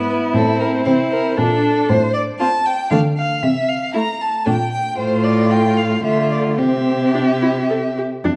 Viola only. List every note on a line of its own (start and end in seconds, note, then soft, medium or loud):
0.00 0.35 B3 soft
0.34 1.39 C4 soft
1.38 1.89 D4 soft
2.41 2.49 C4 soft
2.92 3.00 A3 soft
3.95 4.03 A3 soft
4.46 4.54 A3 soft
4.98 6.00 A3 soft
6.04 6.59 A3 soft
6.58 7.08 C4 soft
7.14 7.22 D4 soft
7.42 7.50 E4 soft
7.70 7.78 A4 soft
7.98 8.06 G4 soft
8.24 8.32 D4 soft